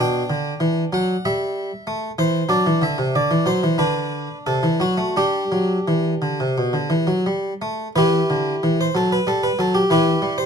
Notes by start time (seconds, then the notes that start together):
0.00 B2 D4 G5
0.30 D3
0.60 E3
0.93 F#3 F#5
1.25 G3 E5
1.87 A3
2.18 E3 C5
2.49 F#3 D4 D5
2.66 E3
2.82 D3 E5
2.98 C3
3.15 D3 D5
3.31 E3
3.46 F#3 C5
3.63 E3
3.78 D3 D4 B4
4.47 C3 A4
4.63 E3
4.80 F#3 F#4
4.97 A3
5.17 G3 D4 G4
5.52 F#3
5.88 E3
6.22 D3
6.40 C3
6.58 B2
6.73 D3
6.90 E3
7.07 F#3
7.26 G3
7.62 A3
7.96 E3 E4 G4 B4
8.30 D3
8.63 E3
8.81 C5
8.95 F#3 A4
9.12 B4
9.27 G3 A4
9.43 B4
9.59 F#3 A4
9.75 G4
9.90 E3 E4 G4 B4
10.22 G3
10.38 C5